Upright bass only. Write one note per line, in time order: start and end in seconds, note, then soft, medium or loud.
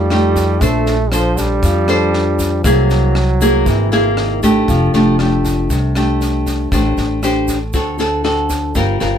0.00 0.57 F2 medium
0.61 1.59 A#1 loud
1.63 2.61 F2 medium
2.64 3.62 C2 loud
3.66 4.64 G#1 medium
4.68 4.92 F1 medium
4.94 5.66 F1 medium
5.70 6.68 C2 medium
6.72 6.96 A1 medium
6.98 7.70 A1 medium
7.74 8.71 D2 medium
8.75 8.99 G1 medium
9.01 9.18 G1 medium